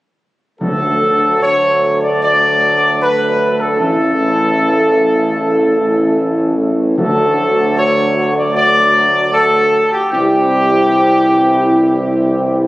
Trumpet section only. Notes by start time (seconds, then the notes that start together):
0.61 A4
1.42 C#5
2.02 D5
2.21 D5
3.01 B4
3.59 A4
3.79 A4
6.99 A4
7.76 C#5
8.36 D5
8.54 D5
9.32 A4
9.92 G4
10.11 G4